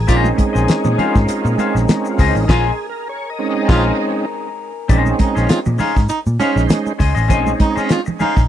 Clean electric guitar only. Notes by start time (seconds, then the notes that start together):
0.07 C#4 G#4 C5 D#5
0.37 muted clean electric guitar stroke
0.53 C#4 G#4 C5 D#5
0.85 muted clean electric guitar stroke
0.98 C#4 G#4 C5 F5
1.16 muted clean electric guitar stroke
1.29 muted clean electric guitar stroke
1.58 C#4 G#4 C5 F5
1.76 muted clean electric guitar stroke
1.89 muted clean electric guitar stroke
2.06 muted clean electric guitar stroke
2.19 C#4 G#4 C5 D#5
2.35 muted clean electric guitar stroke
2.48 C#4 G#4 C5 D#5
3.68 C#4 G#4 C5 F5
4.88 C#4 G#4 C5 D#5
5.19 muted clean electric guitar stroke
5.35 C#4 G#4 C5 D#5
5.66 muted clean electric guitar stroke
5.78 C#4 G#4 C5 F5
5.96 muted clean electric guitar stroke
6.09 muted clean electric guitar stroke
6.40 C#4 G#4 C5 F5
6.56 muted clean electric guitar stroke
6.69 muted clean electric guitar stroke
6.85 muted clean electric guitar stroke
6.98 C#4 G#4 C5 D#5
7.15 C#4 G#4 C5 D#5
7.28 C#4 G#4 C5 D#5
7.59 muted clean electric guitar stroke
7.75 C#4 G#4 C5 D#5
8.06 muted clean electric guitar stroke
8.19 C#4 G#4 C5 F5
8.36 muted clean electric guitar stroke